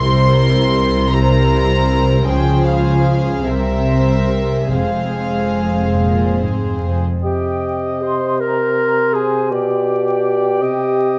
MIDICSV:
0, 0, Header, 1, 10, 480
1, 0, Start_track
1, 0, Key_signature, -4, "minor"
1, 0, Tempo, 763359
1, 1432, Time_signature, 6, 3, 24, 8
1, 1432, Tempo, 792602
1, 2392, Tempo, 857143
1, 3352, Tempo, 831025
1, 4312, Tempo, 788436
1, 4314, Key_signature, -3, "minor"
1, 4792, Tempo, 733496
1, 6860, End_track
2, 0, Start_track
2, 0, Title_t, "Flute section"
2, 0, Program_c, 0, 73
2, 4304, Note_on_c, 0, 79, 49
2, 4765, Note_off_c, 0, 79, 0
2, 4792, Note_on_c, 0, 84, 50
2, 5037, Note_off_c, 0, 84, 0
2, 5040, Note_on_c, 0, 82, 51
2, 5514, Note_off_c, 0, 82, 0
2, 5530, Note_on_c, 0, 80, 43
2, 5766, Note_off_c, 0, 80, 0
2, 5768, Note_on_c, 0, 79, 54
2, 6860, Note_off_c, 0, 79, 0
2, 6860, End_track
3, 0, Start_track
3, 0, Title_t, "Violin section"
3, 0, Program_c, 1, 48
3, 0, Note_on_c, 1, 84, 84
3, 686, Note_off_c, 1, 84, 0
3, 698, Note_on_c, 1, 82, 79
3, 1429, Note_off_c, 1, 82, 0
3, 1430, Note_on_c, 1, 79, 68
3, 1665, Note_off_c, 1, 79, 0
3, 1666, Note_on_c, 1, 77, 55
3, 2146, Note_off_c, 1, 77, 0
3, 2146, Note_on_c, 1, 76, 62
3, 2871, Note_off_c, 1, 76, 0
3, 2873, Note_on_c, 1, 77, 57
3, 4076, Note_off_c, 1, 77, 0
3, 6860, End_track
4, 0, Start_track
4, 0, Title_t, "Cor anglais"
4, 0, Program_c, 2, 69
4, 4309, Note_on_c, 2, 75, 40
4, 5015, Note_off_c, 2, 75, 0
4, 5043, Note_on_c, 2, 72, 43
4, 5765, Note_on_c, 2, 74, 45
4, 5775, Note_off_c, 2, 72, 0
4, 6484, Note_on_c, 2, 75, 47
4, 6494, Note_off_c, 2, 74, 0
4, 6860, Note_off_c, 2, 75, 0
4, 6860, End_track
5, 0, Start_track
5, 0, Title_t, "Violin section"
5, 0, Program_c, 3, 48
5, 2, Note_on_c, 3, 70, 53
5, 3, Note_on_c, 3, 72, 55
5, 696, Note_off_c, 3, 70, 0
5, 696, Note_off_c, 3, 72, 0
5, 710, Note_on_c, 3, 70, 56
5, 710, Note_on_c, 3, 72, 57
5, 1421, Note_off_c, 3, 70, 0
5, 1421, Note_off_c, 3, 72, 0
5, 1426, Note_on_c, 3, 68, 52
5, 1428, Note_on_c, 3, 72, 48
5, 2131, Note_off_c, 3, 72, 0
5, 2145, Note_off_c, 3, 68, 0
5, 2148, Note_on_c, 3, 70, 46
5, 2148, Note_on_c, 3, 72, 44
5, 2857, Note_off_c, 3, 72, 0
5, 2871, Note_off_c, 3, 70, 0
5, 2874, Note_on_c, 3, 68, 40
5, 2875, Note_on_c, 3, 72, 37
5, 4170, Note_off_c, 3, 68, 0
5, 4171, Note_off_c, 3, 72, 0
5, 6860, End_track
6, 0, Start_track
6, 0, Title_t, "Clarinet"
6, 0, Program_c, 4, 71
6, 4301, Note_on_c, 4, 67, 64
6, 4789, Note_on_c, 4, 72, 57
6, 4799, Note_off_c, 4, 67, 0
6, 5039, Note_on_c, 4, 70, 70
6, 5049, Note_off_c, 4, 72, 0
6, 5516, Note_on_c, 4, 68, 59
6, 5526, Note_off_c, 4, 70, 0
6, 5759, Note_off_c, 4, 68, 0
6, 5763, Note_on_c, 4, 67, 69
6, 6860, Note_off_c, 4, 67, 0
6, 6860, End_track
7, 0, Start_track
7, 0, Title_t, "Viola section"
7, 0, Program_c, 5, 48
7, 0, Note_on_c, 5, 55, 55
7, 0, Note_on_c, 5, 64, 54
7, 690, Note_off_c, 5, 55, 0
7, 700, Note_off_c, 5, 64, 0
7, 705, Note_on_c, 5, 55, 54
7, 707, Note_on_c, 5, 64, 54
7, 1418, Note_off_c, 5, 55, 0
7, 1419, Note_off_c, 5, 64, 0
7, 1428, Note_on_c, 5, 65, 47
7, 1430, Note_on_c, 5, 53, 49
7, 2139, Note_on_c, 5, 60, 48
7, 2143, Note_on_c, 5, 55, 43
7, 2146, Note_off_c, 5, 65, 0
7, 2147, Note_off_c, 5, 53, 0
7, 2853, Note_off_c, 5, 60, 0
7, 2855, Note_off_c, 5, 55, 0
7, 2868, Note_on_c, 5, 56, 41
7, 2871, Note_on_c, 5, 60, 43
7, 4168, Note_off_c, 5, 60, 0
7, 4190, Note_off_c, 5, 56, 0
7, 6860, End_track
8, 0, Start_track
8, 0, Title_t, "Bassoon"
8, 0, Program_c, 6, 70
8, 4312, Note_on_c, 6, 48, 46
8, 5765, Note_on_c, 6, 47, 48
8, 5775, Note_off_c, 6, 48, 0
8, 6485, Note_on_c, 6, 48, 44
8, 6495, Note_off_c, 6, 47, 0
8, 6860, Note_off_c, 6, 48, 0
8, 6860, End_track
9, 0, Start_track
9, 0, Title_t, "Cello section"
9, 0, Program_c, 7, 48
9, 0, Note_on_c, 7, 48, 60
9, 1406, Note_off_c, 7, 48, 0
9, 1432, Note_on_c, 7, 49, 52
9, 2133, Note_off_c, 7, 49, 0
9, 2146, Note_on_c, 7, 48, 48
9, 2856, Note_off_c, 7, 48, 0
9, 2867, Note_on_c, 7, 41, 40
9, 3543, Note_off_c, 7, 41, 0
9, 3587, Note_on_c, 7, 46, 50
9, 3811, Note_off_c, 7, 46, 0
9, 3830, Note_on_c, 7, 44, 42
9, 4073, Note_on_c, 7, 41, 36
9, 4075, Note_off_c, 7, 44, 0
9, 4308, Note_off_c, 7, 41, 0
9, 6860, End_track
10, 0, Start_track
10, 0, Title_t, "Double bass section"
10, 0, Program_c, 8, 48
10, 0, Note_on_c, 8, 36, 59
10, 1405, Note_off_c, 8, 36, 0
10, 1430, Note_on_c, 8, 37, 55
10, 2132, Note_off_c, 8, 37, 0
10, 2146, Note_on_c, 8, 36, 49
10, 2856, Note_off_c, 8, 36, 0
10, 2869, Note_on_c, 8, 29, 40
10, 4191, Note_off_c, 8, 29, 0
10, 6860, End_track
0, 0, End_of_file